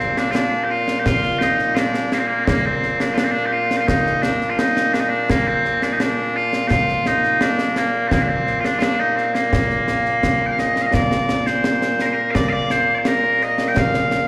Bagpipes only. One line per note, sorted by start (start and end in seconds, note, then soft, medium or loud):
0.00 14.28 A#2 medium
0.00 2.13 A#3 medium
0.00 0.18 C4 medium
0.18 0.31 D4 medium
0.31 0.35 F4 loud
0.35 0.64 D4 loud
0.64 0.70 G4 medium
0.70 0.99 F4 medium
0.99 1.06 G4 medium
1.06 1.38 F4 loud
1.38 1.75 D#4 medium
1.38 1.42 G4 medium
1.75 2.13 D4 loud
1.75 1.78 F4 loud
2.13 2.19 A#3 medium
2.19 2.27 C4 medium
2.27 2.44 A#3 medium
2.44 2.66 A#3 loud
2.44 2.48 C4 loud
2.66 3.01 C4 medium
3.01 3.14 D4 medium
3.14 3.24 D4 loud
3.14 3.17 F4 loud
3.24 3.31 C4 medium
3.31 3.46 D4 loud
3.46 3.52 G4 medium
3.52 3.77 F4 medium
3.77 3.87 F4 medium
3.77 3.80 G4 medium
3.87 4.22 D#4 loud
4.22 4.50 D4 loud
4.50 4.58 F4 medium
4.58 4.93 D#4 loud
4.93 5.00 D4 medium
5.00 5.09 D#4 medium
5.09 5.30 D4 medium
5.30 5.47 A#3 loud
5.47 5.83 C4 medium
5.83 5.93 D4 medium
5.93 6.01 D#4 medium
6.01 6.36 D4 loud
6.36 6.67 F4 loud
6.67 7.07 F4 loud
6.67 6.71 G4 loud
7.07 7.42 D#4 loud
7.42 7.78 D4 loud
7.78 8.08 A#3 medium
8.08 8.12 C4 loud
8.12 8.22 A#3 loud
8.22 8.28 D4 medium
8.28 8.60 C4 medium
8.60 8.65 F4 medium
8.65 8.79 D4 medium
8.79 9.00 D4 loud
8.79 8.82 F4 loud
9.00 9.16 D#4 medium
9.16 9.27 C4 medium
9.27 9.35 C4 medium
9.35 10.46 A#3 medium
10.46 10.51 G5 medium
10.51 10.59 F5 medium
10.59 10.82 D#5 medium
10.82 10.86 F5 medium
10.86 10.94 D#5 medium
10.94 11.47 D5 loud
11.47 12.01 C5 medium
12.01 12.06 A#4 medium
12.06 12.13 C5 medium
12.13 12.31 A#4 medium
12.31 12.49 D5 loud
12.31 12.35 F5 loud
12.49 12.71 D5 loud
12.49 12.53 F5 loud
12.71 12.95 C5 loud
12.95 13.06 C5 medium
12.95 12.98 D5 medium
13.06 13.43 A#4 loud
13.43 13.68 D#5 medium
13.68 13.78 G5 medium
13.78 14.27 F5 loud